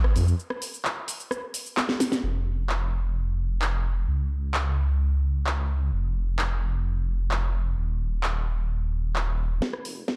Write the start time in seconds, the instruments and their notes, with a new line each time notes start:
0.04 cross-stick
0.16 detuned saw bass F2, open hi-hat, shaker
0.28 shaker
0.39 shaker
0.50 cross-stick
0.62 open hi-hat, shaker
0.74 shaker
0.85 clap, shaker
1.08 open hi-hat, shaker
1.20 shaker
1.31 cross-stick, shaker
1.54 open hi-hat, shaker
1.66 shaker
1.77 snare, clap, shaker
1.89 snare
2.00 snare, open hi-hat, shaker
2.12 snare, shaker
2.23 detuned saw bass F1
2.69 clap
3.62 clap
4.08 detuned saw bass C#2
4.54 clap
5.47 clap
5.93 detuned saw bass F1
6.39 clap
7.31 clap
7.77 detuned saw bass D#1
8.23 clap
9.16 clap
9.62 kick, snare
9.73 cross-stick
9.85 detuned saw bass F1, open hi-hat
10.08 kick, snare